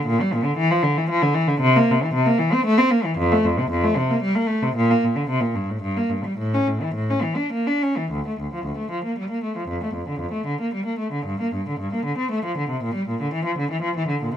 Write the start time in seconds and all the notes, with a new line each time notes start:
0.06 A#2
0.21 G3
0.34 A#2
0.45 D3
0.57 E3
0.71 F3
0.83 D3
0.97 E3
1.10 F3
1.23 D3
1.35 E3
1.48 D3
1.61 C3
1.76 A#3
1.91 C3
2.03 E3
2.14 C3
2.27 A#3
2.39 E3
2.54 C4
2.65 A3
2.78 C4
2.91 A#3
3.05 E3
3.18 F2
3.32 A3
3.45 F2
3.59 C3
3.71 F2
3.84 A3
3.97 C3
4.11 A#3
4.22 G3
4.35 A#3
4.47 A3
4.62 C3
4.76 A#2
4.90 A#3
5.05 A#2
5.16 D3
5.30 C3
5.41 A#2
5.55 G2
5.71 A2
5.82 G2
5.97 A#3
6.10 G2
6.25 G3
6.38 A2
6.54 C#4
6.67 A2
6.82 E3
6.94 A2
7.11 C#4
7.22 E3
7.36 D4
7.52 A#3
7.67 D4
7.82 C#4
7.97 E3
8.12 D2
8.28 A3
8.40 D2
8.54 F3
8.65 D2
8.78 A3
8.91 F3
9.04 A#3
9.18 G3
9.31 A#3
9.44 A3
9.57 F3
9.69 F2
9.84 A3
9.94 F2
10.09 D3
10.20 F2
10.33 A3
10.47 D3
10.61 A#3
10.74 G3
10.86 A#3
10.99 A3
11.13 D3
11.26 G2
11.41 A#3
11.54 G2
11.69 D3
11.80 G2
11.93 A#3
12.05 D3
12.18 C4
12.31 A3
12.45 F3
12.58 D3
12.70 C3
12.83 A#2
12.95 G3
13.09 A#2
13.22 D3
13.34 E3
13.45 F3
13.58 D3
13.71 E3
13.82 F3
13.96 E3
14.08 D3
14.23 A#2